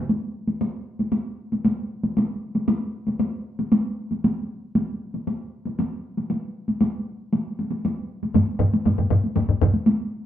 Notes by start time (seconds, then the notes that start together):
0.09 taiko high
0.48 taiko high
0.61 taiko high
0.99 taiko high
1.12 taiko high
1.52 taiko high
1.65 taiko high
2.04 taiko high
2.17 taiko high
2.55 taiko high
2.68 taiko high
3.07 taiko high
3.19 taiko high
3.59 taiko high
3.72 taiko high
4.11 taiko high
4.24 taiko high
4.75 taiko high
5.14 taiko high
5.27 taiko high
5.65 taiko high
5.79 taiko high
6.17 taiko high
6.30 taiko high
6.68 taiko high
6.81 taiko high
7.33 taiko high
7.59 taiko high
7.71 taiko high
7.85 taiko high
8.23 taiko high
8.34 taiko low-mid, taiko high
8.60 taiko low-mid
8.74 taiko high
8.85 taiko low-mid, taiko high
8.98 taiko low-mid
9.10 taiko low-mid
9.24 taiko high
9.36 taiko low-mid, taiko high
9.49 taiko low-mid
9.62 taiko low-mid
9.74 taiko high
9.86 taiko high